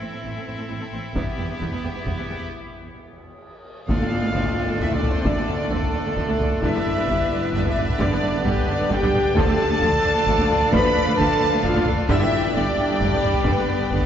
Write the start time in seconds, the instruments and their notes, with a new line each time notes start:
Already playing: french horn section E3 C4, pipe organ C4 E4 A4 E5, violin section E5
0.01 double bass section A1, cello section A2, viola section C4, violin section C5
0.12 cello section A2, viola section C4, violin section A4
0.23 double bass section A1, cello section A2, viola section C4, violin section E4
0.35 cello section A2, viola section C4, violin section A4
0.46 double bass section A1, cello section A2, viola section C4, violin section C5
0.57 cello section A2, viola section C4, violin section A4
0.69 double bass section A1, cello section A2, viola section C4, violin section E4
0.80 cello section A2, viola section C4, violin section A4
0.92 double bass section A1, cello section A2, viola section C4, violin section C5
1.15 double bass section E1, cello section E2, french horn section G3 B3, pipe organ B3 G4, violin section B3 E5, viola section B3, taiko
1.38 double bass section E1, cello section E2, viola section B3, violin section G4
1.49 cello section E2, viola section B3, violin section E4
1.61 double bass section E1, cello section E2, violin section B3, viola section B3, taiko
1.72 cello section E2, viola section B3, violin section E4
1.84 double bass section E1, cello section E2, viola section B3, violin section G4
1.95 cello section E2, viola section B3, violin section E4
2.06 double bass section E1, cello section E2, viola section B3, violin section B3, taiko
2.18 cello section E2, viola section B3, violin section E4
2.29 double bass section E1, cello section E2, viola section B3, violin section G4
3.87 double bass section D2, cello section D2, trombone section D3 A3, viola section D3 F3, pipe organ D4 F4 A4 D5, french horn section F4, violin section A4 D5 F5, trumpet section F5, taiko, tam-tam
4.00 cello section D2, viola section D3 A3
4.12 cello section D2, double bass section D2, viola section D3 D4
4.22 cello section D2, viola section D3 A3
4.34 cello section D2, double bass section D2, viola section D3 F3, taiko
4.46 taiko low
4.58 double bass section D2, cello section D2, viola section D3 D4
4.69 cello section D2, viola section D3 A3
4.80 double bass section D2, cello section D2, viola section D3 F3, french horn section E4, violin section E5, trumpet section E5, taiko
4.92 cello section D2, viola section D3 A3, french horn section D4, violin section D5, trumpet section D5, taiko low
5.03 cello section D2, double bass section D2, viola section D3 D4, taiko low
5.11 french horn section C4, trumpet section C5, violin section C5, taiko low
5.25 cello section D2, double bass section D2, viola section D3 F3, french horn section D4, trumpet section D5, violin section D5, taiko
5.37 cello section D2, viola section D3 A3
5.48 cello section D2, double bass section D2, viola section D3 D4
5.59 cello section D2, viola section D3 A3
5.70 cello section D2, double bass section D2, viola section D3 F3, french horn section A3, trumpet section A4, violin section A4, taiko
5.83 taiko low
5.94 double bass section D2, cello section D2, viola section D3 D4
6.05 cello section D2, viola section D3 A3
6.17 cello section D2, double bass section D2, viola section D3 F3, taiko
6.28 cello section D2, viola section D3 A3, taiko low
6.39 double bass section D2, cello section D2, viola section D3 D4, taiko low
6.51 taiko low
6.61 double bass section G1, cello section G2, trombone section D3 B3, viola section D3 G3, french horn section E4, pipe organ G4 B4, violin section B4 D5 E5, trumpet section E5, taiko
6.74 cello section G2, viola section D3 B3
6.85 double bass section G1, cello section G2, viola section D3 D4
6.97 cello section G2, viola section D3 B3
7.08 double bass section G1, cello section G2, viola section D3 G3, taiko
7.20 taiko low
7.31 double bass section G1, cello section G2, viola section D3 D4
7.43 cello section G2, viola section D3 B3
7.53 double bass section G1, cello section G2, viola section D3 G3, french horn section E4, trumpet section E5, violin section E5, taiko
7.65 cello section G2, viola section D3 B3, french horn section E4, trumpet section E5, violin section E5, taiko low
7.76 double bass section G1, cello section G2, viola section D3 D4, taiko low
7.83 french horn section E4, trumpet section E5, violin section E5
7.88 taiko low
7.98 double bass section G1, cello section G2, viola section D3 G3, french horn section D4, trumpet section D5, violin section D5, taiko
8.11 cello section G2, viola section D3 B3
8.22 double bass section G1, cello section G2, viola section D3 D4
8.33 cello section G2, viola section D3 B3
8.44 double bass section G1, cello section G2, viola section D3 G3, french horn section G3, trumpet section G4, violin section G4, taiko
8.57 taiko low
8.67 double bass section G1, cello section G2, viola section D3 D4, french horn section D4, trumpet section D5, violin section D5
8.79 cello section G2, viola section D3 B3
8.90 double bass section G1, cello section G2, viola section D3 G3, french horn section G4, trumpet section G5, violin section G5, taiko
9.01 cello section G2, viola section D3 B3, taiko low
9.13 double bass section G1, cello section G2, viola section D3 D4, taiko low
9.25 taiko low
9.34 cello section D2, double bass section D2, viola section D3 F3, trombone section F3 D4, pipe organ D4 F4 A4 D5, french horn section A4, violin section D5 F5 A5, trumpet section A5, taiko
9.47 cello section D2, viola section D3 A3
9.58 cello section D2, double bass section D2, viola section D3 D4
9.69 cello section D2, viola section D3 A3
9.80 cello section D2, double bass section D2, viola section D3 F3, taiko
9.92 taiko low
10.04 cello section D2, double bass section D2, viola section D3 D4
10.15 cello section D2, viola section D3 A3
10.27 cello section D2, double bass section D2, viola section D3 F3, taiko
10.38 cello section D2, viola section D3 A3, taiko low
10.49 double bass section D2, cello section D2, viola section D3 D4, taiko low
10.61 taiko low
10.71 double bass section D2, cello section D2, viola section D3 F3, french horn section B4, trumpet section B5, violin section B5, taiko
10.84 cello section D2, viola section D3 A3
10.95 cello section D2, double bass section D2, viola section D3 D4
11.06 cello section D2, viola section D3 A3
11.17 double bass section D2, cello section D2, viola section D3 F3, french horn section A4, trumpet section A5, violin section A5, taiko
11.29 taiko low
11.40 cello section D2, double bass section D2, viola section D3 D4
11.52 cello section D2, viola section D3 A3
11.63 cello section D2, double bass section D2, viola section D3 F3, french horn section F4, violin section F5, trumpet section F5, taiko
11.74 cello section D2, viola section D3 A3, taiko low
11.86 cello section D2, double bass section D2, viola section D3 D4, taiko low
11.97 taiko low
12.08 double bass section G1, cello section G2, viola section D3 G3, trombone section G3 D4, french horn section E4, pipe organ G4, violin section D5 E5 G5, trumpet section E5, taiko
12.21 cello section G2, viola section D3 B3
12.32 double bass section G1, cello section G2, viola section D3 D4
12.43 cello section G2, viola section D3 B3, taiko rim
12.54 double bass section G1, cello section G2, viola section D3 G3, french horn section D4, trumpet section D5, violin section D5, taiko
12.66 taiko low
12.77 double bass section G1, cello section G2, viola section D3 D4
12.89 cello section G2, viola section D3 B3
12.99 double bass section G1, cello section G2, viola section D3 G3, french horn section D4, trumpet section D5, violin section D5, taiko
13.11 cello section G2, viola section D3 B3, taiko low
13.23 double bass section G1, cello section G2, viola section D3 D4, taiko low
13.34 taiko low
13.45 double bass section G1, cello section G2, viola section D3 G3, french horn section B3, trumpet section B4, violin section B4, taiko
13.57 cello section G2, viola section D3 B3
13.68 double bass section G1, cello section G2, viola section D3 D4
13.80 cello section G2, viola section D3 B3
13.91 double bass section G1, cello section G2, viola section D3 G3, taiko
14.02 taiko low